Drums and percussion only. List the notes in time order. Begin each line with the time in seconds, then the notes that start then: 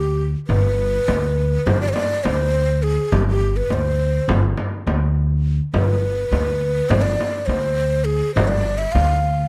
0.50 frame drum
1.08 frame drum
1.67 frame drum
1.96 frame drum
2.25 frame drum
3.12 frame drum
3.70 frame drum
4.29 frame drum
4.58 frame drum
4.87 frame drum
5.74 frame drum
6.33 frame drum
6.90 frame drum
7.20 frame drum
7.49 frame drum
8.37 frame drum
8.95 frame drum